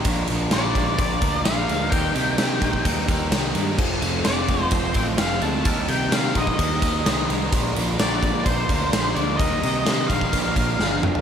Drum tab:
CC |----------------|----------------|x---------------|----------------|
RD |x-x-x-x-x-x-x-x-|x-x-x-x-x-x-x-x-|--x-x-x-x-x-x-x-|x-x-x-x-x-x-x-x-|
SD |----o-------o---|----o-------o---|----o-------o---|----o-------o---|
T2 |----------------|----------------|----------------|----------------|
FT |----------------|----------------|----------------|----------------|
BD |o-----o-o-o-----|o-----ooo-o-----|o-----o-o-o-----|o-----ooo-o-----|

CC |----------------|----------------|
RD |x-x-x-x-x-x-x-x-|x-x-x-x-x-x-----|
SD |----o-------o---|----o-------o---|
T2 |----------------|--------------o-|
FT |----------------|---------------o|
BD |o-----o-o-o-----|o-----ooo-o-----|